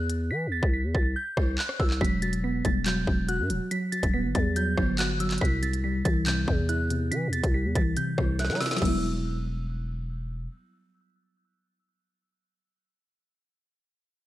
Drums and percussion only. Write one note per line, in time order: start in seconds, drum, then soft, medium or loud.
0.10 closed hi-hat medium
0.63 kick loud
0.95 kick loud
1.37 kick loud
1.37 cross-stick loud
1.58 clap loud
1.69 cross-stick medium
1.80 kick loud
1.90 clap medium
2.01 kick loud
2.01 closed hi-hat medium
2.22 closed hi-hat medium
2.33 closed hi-hat medium
2.65 kick loud
2.65 closed hi-hat medium
2.86 clap loud
2.86 closed hi-hat medium
3.07 kick loud
3.29 closed hi-hat medium
3.50 closed hi-hat medium
3.71 closed hi-hat medium
3.92 closed hi-hat medium
4.03 kick loud
4.03 closed hi-hat medium
4.35 kick loud
4.35 closed hi-hat medium
4.56 closed hi-hat medium
4.77 kick loud
4.77 cross-stick loud
4.99 clap loud
4.99 closed hi-hat medium
5.20 closed hi-hat medium
5.31 clap medium
5.31 closed hi-hat medium
5.38 kick loud
5.38 closed hi-hat medium
5.45 closed hi-hat medium
5.63 closed hi-hat medium
5.73 closed hi-hat medium
6.05 kick loud
6.05 closed hi-hat medium
6.26 clap loud
6.26 closed hi-hat medium
6.48 kick loud
6.69 closed hi-hat medium
6.90 closed hi-hat medium
7.12 closed hi-hat medium
7.33 closed hi-hat medium
7.44 kick loud
7.44 closed hi-hat medium
7.75 kick loud
7.75 closed hi-hat medium
7.97 closed hi-hat medium
8.18 kick medium
8.18 cross-stick loud
8.39 snare medium
8.39 closed hi-hat medium
8.45 snare medium
8.50 snare medium
8.55 snare medium
8.61 snare loud
8.61 open hi-hat medium
8.66 snare medium
8.71 snare loud
8.71 closed hi-hat soft
8.77 snare loud
8.77 closed hi-hat medium
8.82 kick loud
8.82 closed hi-hat medium
8.82 crash medium